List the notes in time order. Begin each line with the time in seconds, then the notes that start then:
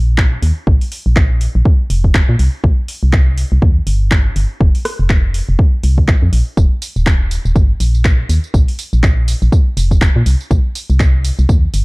Already playing: A#1
0.18 kick, clap
0.42 D#2, open hi-hat
0.67 A#1, kick
0.81 open hi-hat
0.92 open hi-hat
1.06 A#1
1.16 kick, clap
1.41 open hi-hat
1.55 A#1
1.65 kick
1.90 F1, open hi-hat
2.04 kick
2.15 kick, clap
2.29 A#2
2.39 C2, open hi-hat
2.64 C2, kick
2.88 open hi-hat
3.03 C2
3.13 kick, clap
3.38 open hi-hat
3.52 C2
3.62 D#2, kick
3.87 G1, open hi-hat
4.11 kick, clap
4.36 G1, open hi-hat
4.61 F1, kick
4.75 open hi-hat
4.85 cross-stick, open hi-hat
4.99 F1
5.10 kick, clap
5.34 open hi-hat
5.49 F1
5.59 kick
5.83 C2, open hi-hat
5.98 kick
6.08 kick, clap
6.22 F2
6.33 A#1, open hi-hat
6.57 D#1, kick, tambourine
6.82 open hi-hat, tambourine
6.96 D#1, tambourine
7.06 kick, clap, tambourine
7.31 open hi-hat, tambourine
7.45 D#1, tambourine
7.56 G1, kick, tambourine
7.80 A#1, open hi-hat, tambourine
7.95 tambourine
8.05 kick, clap, tambourine
8.29 D#2, open hi-hat, tambourine
8.44 tambourine
8.54 A#1, kick, tambourine
8.68 open hi-hat
8.79 open hi-hat, tambourine
8.93 A#1, tambourine
9.03 kick, clap, tambourine
9.28 open hi-hat, tambourine
9.42 A#1, tambourine
9.52 kick, tambourine
9.77 F1, open hi-hat, tambourine
9.91 kick, tambourine
10.01 kick, clap, tambourine
10.16 A#2
10.26 C2, open hi-hat, tambourine
10.40 tambourine
10.51 C2, kick, tambourine
10.75 open hi-hat, tambourine
10.90 C2, tambourine
11.00 kick, clap, tambourine
11.24 open hi-hat, tambourine
11.39 C2, tambourine
11.49 D#2, kick, tambourine
11.74 G1, open hi-hat, tambourine